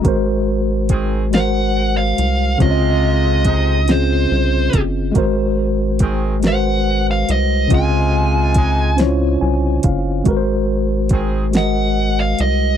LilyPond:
<<
  \new Staff \with { instrumentName = "Lead electric guitar" } { \time 6/8 \key des \major \tempo 4. = 47 r4. ges''8. f''8. | ees''4. c''4 r8 | r4. ges''8. f''16 ees''8 | aes''4. r4. |
r4. ges''8. f''16 ees''8 | }
  \new Staff \with { instrumentName = "Tine electric piano" } { \time 6/8 \key des \major << { r2. | r2. | r2. | r2 aes''8 f''8 |
r2. | } \\ { <aes ges' bes' c''>4 r8 <aes ges' bes' c''>4 r8 | <des c' f' des'' ees''>4 r8 <c' des' f' aes'>4 r8 | <aes ges' bes' c''>4 r8 <aes ges' bes' ces'' c''>4 r8 | <des c' f' ees''>4 r8 <des' fes' f' c'' des''>4 r8 |
<aes ges' bes' ces'' c''>4 r8 <aes ges' bes' ees''>4 r8 | } >> }
  \new Staff \with { instrumentName = "Horn section" } { \clef bass \time 6/8 \key des \major r4 <ees c' aes'>8 r4. | <c aes f'>4 <c aes ees'>8 r4. | r4 <ees c' aes'>8 r4. | <c aes f'>4 <c aes ees'>8 r4. |
r4 <ees c' aes'>8 r4. | }
  \new Staff \with { instrumentName = "Analog synth bass" } { \clef bass \time 6/8 \key des \major aes,,2~ aes,,8 c,8 | des,2 c,8 ges,,8 | aes,,2~ aes,,8 c,8 | des,2 c,8 ges,,8 |
aes,,2~ aes,,8 c,8 | }
  \new DrumStaff \with { instrumentName = "Drums" } \drummode { \time 6/8 <hh bd>4 <hh bd>8 <hh sn>4 hh8 | <hh bd>4 <hh bd>8 <hh sn>4 <hh bd>8 | <hh bd>4 <hh bd>8 <hh sn>4 hh8 | <hh bd>4 <hh bd>8 <hh sn>4 <hh bd>8 |
<hh bd>4 <hh bd>8 <hh sn>4 hh8 | }
>>